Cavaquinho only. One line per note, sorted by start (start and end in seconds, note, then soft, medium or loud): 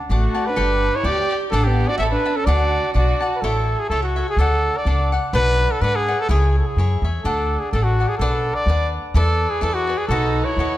0.00 0.10 F#5 medium
0.00 0.11 A5 medium
0.10 0.35 D4 soft
0.10 0.34 D5 medium
0.10 0.34 F#5 medium
0.10 0.33 A5 medium
0.34 0.56 D5 soft
0.34 0.57 F#5 soft
0.34 0.56 A5 soft
0.56 1.03 G4 medium
0.56 1.03 A4 medium
0.56 1.04 D5 medium
0.56 1.03 G5 medium
1.04 1.30 G4 medium
1.04 1.30 A4 soft
1.04 1.29 D5 medium
1.04 1.30 G5 medium
1.31 1.53 G4 soft
1.31 1.52 D5 medium
1.31 1.53 G5 soft
1.53 1.99 D4 medium
1.53 1.99 D5 medium
1.53 2.00 F#5 medium
1.53 2.01 A5 medium
1.99 2.25 C#5 soft
1.99 2.25 E5 medium
1.99 2.25 A5 medium
1.99 2.24 B5 medium
2.26 2.46 E5 soft
2.26 2.47 A5 soft
2.26 2.47 B5 medium
2.47 2.93 D4 medium
2.47 2.93 D5 medium
2.47 2.94 F#5 medium
2.47 2.95 A5 medium
2.94 3.20 D4 soft
2.94 3.21 D5 medium
2.94 3.21 F#5 medium
2.94 3.19 A5 medium
3.21 3.43 D5 soft
3.21 3.43 F#5 soft
3.21 3.43 A5 soft
3.44 3.90 E4 medium
3.44 3.90 A4 medium
3.44 3.91 C#5 medium
3.44 3.91 E5 medium
3.91 4.17 E4 medium
3.91 4.17 A4 soft
3.91 4.16 C#5 medium
3.91 4.15 E5 soft
4.16 4.38 A4 soft
4.16 4.39 C#5 soft
4.16 4.38 E5 soft
4.38 4.85 D4 medium
4.38 4.86 A4 medium
4.38 4.87 D5 medium
4.38 4.86 F#5 medium
4.87 5.12 D4 medium
4.87 5.12 A4 medium
4.87 5.12 D5 soft
4.87 5.11 F#5 medium
5.12 5.34 A4 soft
5.12 5.34 D5 soft
5.12 5.34 F#5 soft
5.34 5.80 D4 medium
5.34 5.81 B4 medium
5.34 5.82 D5 medium
5.34 5.82 F#5 medium
5.81 6.07 D4 medium
5.81 6.07 B4 medium
5.81 6.07 D5 medium
5.81 6.07 F#5 medium
6.08 6.30 B4 soft
6.08 6.30 D5 soft
6.08 6.29 F#5 medium
6.29 6.77 E4 medium
6.29 6.77 G#4 medium
6.29 6.78 C#5 medium
6.29 6.77 E5 medium
6.78 7.03 E4 medium
6.78 7.04 G#4 soft
6.78 7.03 C#5 medium
6.78 7.03 E5 medium
7.04 7.25 G#4 soft
7.04 7.25 C#5 soft
7.04 7.25 E5 soft
7.25 7.73 D4 medium
7.25 7.72 A4 medium
7.25 7.74 D5 medium
7.25 7.73 F#5 medium
7.73 7.98 D4 medium
7.73 7.99 A4 medium
7.73 7.99 D5 medium
7.73 7.99 F#5 medium
8.00 8.21 A4 soft
8.00 8.20 D5 soft
8.00 8.21 F#5 soft
8.21 8.67 D4 medium
8.21 8.69 B4 medium
8.21 8.68 D5 medium
8.21 8.68 F#5 medium
8.68 9.15 D4 medium
8.68 9.15 B4 medium
8.68 9.15 D5 medium
8.68 9.16 F#5 medium
9.15 9.60 E4 medium
9.15 9.62 A4 medium
9.15 9.63 B4 medium
9.15 9.62 D5 medium
9.61 9.87 E4 medium
9.61 9.88 G#4 medium
9.61 9.88 B4 medium
9.61 9.86 D5 medium
9.87 10.10 G#4 soft
9.87 10.10 B4 soft
9.87 10.09 D5 soft
10.11 10.58 F#4 medium
10.11 10.58 A4 medium
10.11 10.58 B4 medium
10.11 10.59 D#5 medium
10.59 10.78 F#4 medium
10.59 10.78 A4 soft
10.59 10.78 B4 medium
10.59 10.78 D#5 medium